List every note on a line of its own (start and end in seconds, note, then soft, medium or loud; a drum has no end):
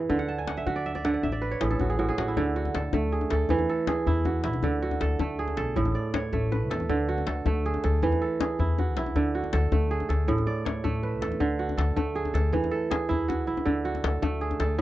0.00 0.14 E3 medium
0.00 0.34 G#4 medium
0.00 0.38 B4 medium
0.10 0.58 D2 medium
0.10 1.04 D3 medium
0.10 djembe bass medium
0.19 0.47 F#5 medium
0.19 djembe slap soft
0.19 djembe tone soft
0.28 1.15 A5 medium
0.38 1.28 G#5 medium
0.47 0.66 F#5 medium
0.47 djembe slap medium
0.57 0.85 E5 medium
0.57 djembe tone soft
0.66 1.15 D2 medium
0.66 1.80 F#4 medium
0.66 1.04 F#5 medium
0.66 djembe slap soft
0.66 djembe bass medium
0.76 0.95 D5 medium
0.86 1.23 E5 medium
0.95 1.13 D5 medium
0.95 djembe tone medium
1.05 1.28 D3 medium
1.05 2.01 F#5 medium
1.05 djembe slap medium
1.14 1.32 D5 medium
1.14 djembe slap soft
1.23 1.56 A1 medium
1.23 2.27 E5 medium
1.23 djembe bass medium
1.32 1.57 D5 medium
1.32 djembe tone medium
1.41 2.64 B4 medium
1.41 djembe slap soft
1.51 2.43 C#5 medium
1.61 1.77 A1 medium
1.61 1.98 A2 medium
1.61 1.89 G#4 medium
1.61 djembe slap medium
1.70 1.96 A4 medium
1.70 djembe slap soft
1.70 djembe tone medium
1.79 2.12 A1 medium
1.79 1.98 F#4 medium
1.79 djembe bass medium
1.90 2.08 G#4 medium
1.99 2.42 A2 medium
1.99 2.18 F#4 medium
2.08 2.81 G#4 medium
2.08 djembe tone soft
2.18 2.34 A1 medium
2.18 2.56 F#4 medium
2.18 djembe slap medium
2.28 3.85 E4 medium
2.37 2.69 D2 medium
2.37 3.55 D3 medium
2.37 djembe bass medium
2.56 4.02 F#4 medium
2.65 djembe tone medium
2.75 2.91 D2 medium
2.75 3.31 A4 medium
2.75 djembe slap medium
2.93 3.25 D2 medium
2.93 3.94 A3 medium
2.93 djembe tone medium
2.93 djembe bass medium
3.12 3.75 G#4 medium
3.21 djembe tone medium
3.30 3.47 D2 medium
3.30 3.69 A4 medium
3.30 djembe slap medium
3.49 3.66 E2 loud
3.49 4.68 E3 medium
3.49 djembe bass medium
3.59 djembe tone medium
3.69 5.01 A4 medium
3.87 5.07 G#4 medium
3.87 djembe slap medium
3.87 djembe tone medium
4.07 4.46 E2 medium
4.07 4.44 E4 medium
4.07 djembe slap soft
4.07 djembe bass medium
4.25 4.82 F#4 medium
4.25 djembe slap soft
4.25 djembe tone medium
4.44 4.63 B1 medium
4.44 6.02 E4 medium
4.44 djembe slap medium
4.53 djembe tone medium
4.63 4.95 D2 medium
4.63 5.81 D3 medium
4.63 djembe bass medium
4.82 6.29 F#4 medium
4.91 djembe tone medium
5.01 5.17 D2 medium
5.01 5.57 A4 medium
5.01 djembe slap medium
5.19 5.52 D2 medium
5.19 6.33 A3 medium
5.19 djembe tone medium
5.19 djembe bass medium
5.39 6.39 G#4 medium
5.48 djembe tone medium
5.57 5.74 B1 medium
5.57 6.70 A4 medium
5.57 djembe slap medium
5.76 5.93 A1 loud
5.76 6.94 A2 medium
5.76 djembe bass medium
5.85 djembe tone medium
5.95 7.06 D5 medium
6.14 6.95 C#5 medium
6.14 djembe slap medium
6.14 djembe tone medium
6.33 6.70 A1 medium
6.33 7.46 A3 medium
6.33 djembe slap soft
6.33 djembe bass medium
6.52 7.75 B4 medium
6.52 djembe slap soft
6.52 djembe tone medium
6.70 6.89 E2 medium
6.70 7.27 A4 medium
6.70 djembe slap medium
6.80 djembe tone medium
6.89 7.21 D2 medium
6.89 8.07 D3 medium
6.89 djembe bass medium
7.09 8.55 F#4 medium
7.18 djembe tone medium
7.27 7.43 D2 medium
7.27 7.84 A4 medium
7.27 djembe slap medium
7.46 7.78 D2 medium
7.46 8.47 A3 medium
7.46 djembe tone medium
7.46 djembe bass medium
7.66 8.28 G#4 medium
7.74 djembe tone medium
7.84 8.00 D2 medium
7.84 8.21 A4 medium
7.84 djembe slap medium
8.02 8.18 E2 loud
8.02 9.20 E3 medium
8.02 djembe bass medium
8.12 djembe tone medium
8.22 9.53 A4 medium
8.41 9.59 G#4 medium
8.41 djembe slap medium
8.41 djembe tone medium
8.59 8.96 E2 medium
8.59 8.97 E4 medium
8.59 djembe slap soft
8.59 djembe bass medium
8.78 9.34 F#4 medium
8.78 djembe slap soft
8.78 djembe tone medium
8.96 9.15 B1 loud
8.96 10.54 E4 medium
8.96 djembe slap medium
9.06 djembe tone medium
9.15 9.47 D2 medium
9.15 10.33 D3 medium
9.15 djembe slap soft
9.15 djembe bass medium
9.25 djembe slap soft
9.35 10.81 F#4 medium
9.44 djembe tone medium
9.53 9.69 D2 loud
9.53 10.09 A4 medium
9.53 djembe slap medium
9.72 10.03 D2 loud
9.72 10.84 A3 medium
9.72 djembe tone medium
9.72 djembe bass medium
9.82 djembe slap soft
9.91 10.90 G#4 medium
10.00 djembe tone medium
10.09 10.25 D2 medium
10.09 11.21 A4 medium
10.09 djembe slap medium
10.28 10.44 A1 loud
10.28 11.45 A2 medium
10.28 djembe bass medium
10.38 djembe tone medium
10.47 11.58 D5 medium
10.65 11.46 C#5 medium
10.65 djembe slap medium
10.65 djembe tone medium
10.84 11.22 A1 medium
10.84 11.96 A3 medium
10.84 djembe bass medium
10.95 djembe slap soft
11.03 12.26 B4 medium
11.22 11.40 E2 medium
11.22 11.77 A4 medium
11.22 djembe slap medium
11.32 djembe tone medium
11.40 11.72 D2 medium
11.40 12.58 D3 medium
11.40 djembe bass medium
11.59 13.05 F#4 medium
11.69 djembe tone medium
11.77 11.94 D2 medium
11.77 12.34 A4 medium
11.77 djembe slap medium
11.96 12.29 D2 medium
11.96 12.97 A3 medium
11.96 djembe tone medium
11.96 djembe bass medium
12.15 12.77 G#4 medium
12.25 djembe tone medium
12.34 12.50 D2 medium
12.34 12.71 A4 medium
12.34 djembe slap medium
12.53 12.69 E2 loud
12.53 13.71 E3 medium
12.53 djembe bass medium
12.64 djembe tone medium
12.71 14.03 A4 medium
12.91 14.10 G#4 medium
12.91 djembe slap medium
12.91 djembe tone medium
13.09 13.47 E2 medium
13.09 13.47 E4 medium
13.09 djembe slap soft
13.09 djembe bass medium
13.28 13.84 F#4 medium
13.28 djembe slap soft
13.28 djembe tone medium
13.47 13.66 B1 loud
13.47 14.81 E4 medium
13.57 djembe tone medium
13.66 13.98 D2 medium
13.66 14.81 D3 medium
13.66 djembe bass medium
13.85 14.81 F#4 medium
13.95 djembe tone medium
14.04 14.20 D2 medium
14.04 14.59 A4 medium
14.04 djembe slap medium
14.22 14.54 D2 medium
14.22 14.81 A3 medium
14.22 djembe tone medium
14.22 djembe bass medium
14.41 14.81 G#4 medium
14.51 djembe tone medium
14.60 14.76 D2 medium
14.60 14.81 A4 medium
14.60 djembe slap medium